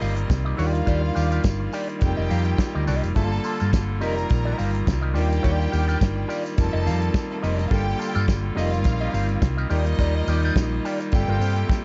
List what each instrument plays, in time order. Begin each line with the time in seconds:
Already playing: pipe organ D#3 G3 A#3 C4 F4, tine electric piano G3 C4 D#4 F4 A#4, string section D#4 D#5
0.00 fingered electric bass G1, clean electric guitar G4 A#4 F5, open hi-hat, tambourine
0.16 muted clean electric guitar stroke, closed hi-hat
0.29 fingered electric bass C2, muted clean electric guitar stroke, kick, snare, closed hi-hat, tambourine
0.45 clean electric guitar G4 A#4 D#5
0.57 fingered electric bass D#2, tine electric piano G3 D4 D#4 F4 A#4, clean electric guitar F4 G4 D5, string section F4 F5, pipe organ D5, open hi-hat, tambourine
0.74 muted clean electric guitar stroke, closed hi-hat
0.86 fingered electric bass D#2, clean electric guitar F4 G4 D5, kick, closed hi-hat, tambourine
1.03 muted clean electric guitar stroke
1.15 fingered electric bass D#2, clean electric guitar F4 G4 D5, open hi-hat, tambourine
1.31 clean electric guitar F4 G4 D5, closed hi-hat, tambourine
1.44 fingered electric bass G1, kick, snare, closed hi-hat, tambourine
1.60 muted clean electric guitar stroke
1.73 clean electric guitar F4 G4 D5, open hi-hat, tambourine
1.89 muted clean electric guitar stroke, closed hi-hat
1.99 fingered electric bass F1, tine electric piano G3 C4 D#4 F4 A4, pipe organ F4, string section G4 G5, muted clean electric guitar stroke, kick, closed hi-hat, tambourine
2.03 pipe organ C4
2.08 tine electric piano A#4
2.17 fingered electric bass F1, clean electric guitar G4 A#4 D#5
2.30 fingered electric bass F2, clean electric guitar G4 A#4 F5, open hi-hat, tambourine
2.45 muted clean electric guitar stroke, closed hi-hat
2.58 muted clean electric guitar stroke, kick, snare, closed hi-hat, tambourine
2.75 fingered electric bass D2, clean electric guitar G4 A#4 D#5
2.87 fingered electric bass C2, clean electric guitar G4 A#4 D#5, open hi-hat, tambourine
3.03 fingered electric bass F1, muted clean electric guitar stroke, closed hi-hat, tambourine
3.14 fingered electric bass G1, pipe organ D3 A#3 F4 A4, tine electric piano G3 A#3 D4 F4 A4, clean electric guitar A#3 F4 A4, string section A4 A5, kick, closed hi-hat, tambourine
3.32 muted clean electric guitar stroke, tambourine
3.44 clean electric guitar A#3 F4 A4, open hi-hat, tambourine
3.60 fingered electric bass G2, clean electric guitar A#3 F4 A4, closed hi-hat, tambourine
3.73 fingered electric bass G1, kick, snare, closed hi-hat, tambourine
3.88 muted clean electric guitar stroke
4.00 fingered electric bass F1, pipe organ D#3 C4, tine electric piano G3 C4 D#4 F4 A#4, clean electric guitar G4 A#4 D#5, string section A#4 A#5, open hi-hat, tambourine
4.16 muted clean electric guitar stroke, closed hi-hat, tambourine
4.30 fingered electric bass A#1, muted clean electric guitar stroke, kick, closed hi-hat, tambourine
4.45 clean electric guitar G4 A#4 D#5
4.57 fingered electric bass G1, clean electric guitar G4 A#4 F5, open hi-hat, tambourine
4.75 closed hi-hat
4.86 fingered electric bass C2, muted clean electric guitar stroke, kick, snare, closed hi-hat, tambourine
5.01 clean electric guitar G4 A#4 D#5
5.14 fingered electric bass D#2, tine electric piano G3 D4 D#4 F4 A#4, pipe organ G3 A#3 D5, clean electric guitar F4 G4 D5, string section G4 G5, open hi-hat, tambourine
5.30 muted clean electric guitar stroke, closed hi-hat, tambourine
5.43 fingered electric bass D#2, clean electric guitar F4 G4 D5, kick, closed hi-hat, tambourine
5.60 muted clean electric guitar stroke, tambourine
5.72 fingered electric bass D#2, clean electric guitar F4 G4 D5, open hi-hat, tambourine
5.88 clean electric guitar F4 G4 D5, closed hi-hat, tambourine
6.01 fingered electric bass G1, kick, snare, closed hi-hat, tambourine
6.16 muted clean electric guitar stroke
6.28 clean electric guitar F4 G4 D5, open hi-hat, tambourine
6.45 muted clean electric guitar stroke, closed hi-hat, tambourine
6.56 fingered electric bass F1, pipe organ D#3 C4 F4, tine electric piano G3 C4 D#4 F4 A#4, string section A4 A5, muted clean electric guitar stroke, kick, closed hi-hat, tambourine
6.73 fingered electric bass F1, clean electric guitar G4 A#4 D#5
6.85 fingered electric bass F2, clean electric guitar G4 A#4 F5, open hi-hat, tambourine
7.02 muted clean electric guitar stroke, closed hi-hat
7.14 muted clean electric guitar stroke, kick, snare, closed hi-hat, tambourine
7.30 string section A3 A4, muted clean electric guitar stroke
7.38 string section A#3 A#4
7.42 fingered electric bass F1, string section C4 C5, clean electric guitar G4 A#4 D#5, open hi-hat, tambourine
7.52 string section D4 D5
7.58 string section D#4 D#5, muted clean electric guitar stroke, closed hi-hat, tambourine
7.65 string section F4 F5
7.70 fingered electric bass G1, pipe organ D3 A4, tine electric piano G3 A#3 D4 F4 A4, clean electric guitar A#3 F4 A4, string section G4 G5, kick, closed hi-hat, tambourine
7.86 muted clean electric guitar stroke, tambourine
7.98 clean electric guitar A#3 F4 A4, open hi-hat, tambourine
8.15 fingered electric bass G2, clean electric guitar A#3 F4 A4, closed hi-hat
8.28 fingered electric bass G1, kick, snare, closed hi-hat, tambourine
8.44 muted clean electric guitar stroke
8.55 fingered electric bass F1, pipe organ D#3 G3 C4, tine electric piano G3 C4 D#4 F4 A4, string section F4 F5, clean electric guitar G4 A#4 D#5, open hi-hat, tambourine
8.64 tine electric piano A#4
8.73 muted clean electric guitar stroke, closed hi-hat, tambourine
8.84 fingered electric bass A#1, muted clean electric guitar stroke, kick, closed hi-hat, tambourine
9.01 clean electric guitar G4 A#4 D#5
9.13 fingered electric bass G1, clean electric guitar G4 A#4 F5, open hi-hat, tambourine
9.29 muted clean electric guitar stroke, closed hi-hat
9.42 fingered electric bass C2, muted clean electric guitar stroke, kick, snare, closed hi-hat, tambourine
9.57 clean electric guitar G4 A#4 D#5
9.69 fingered electric bass D#2, tine electric piano G3 A#3 D#4 F4 A#4, pipe organ D#4 F4, string section D#4 D#5, clean electric guitar F4 G4 D5, open hi-hat, tambourine
9.86 muted clean electric guitar stroke, closed hi-hat, tambourine
9.99 fingered electric bass D#2, clean electric guitar F4 G4 D5, kick, closed hi-hat, tambourine
10.16 muted clean electric guitar stroke
10.27 fingered electric bass D#2, clean electric guitar F4 G4 D5, open hi-hat, tambourine
10.43 clean electric guitar F4 G4 D5, closed hi-hat, tambourine
10.56 fingered electric bass A#1, kick, snare, closed hi-hat, tambourine
10.72 muted clean electric guitar stroke
10.85 clean electric guitar F4 G4 D5, open hi-hat, tambourine
11.00 muted clean electric guitar stroke, closed hi-hat, tambourine
11.12 fingered electric bass G1, pipe organ C3 A4, tine electric piano G3 A#3 C4 F4 A4, string section G4 G5, muted clean electric guitar stroke, kick, closed hi-hat, tambourine
11.28 fingered electric bass G1, clean electric guitar C4 F4 A#4
11.40 fingered electric bass G2, clean electric guitar C4 F4 C5, open hi-hat, tambourine
11.56 closed hi-hat
11.68 muted clean electric guitar stroke, kick, snare, tambourine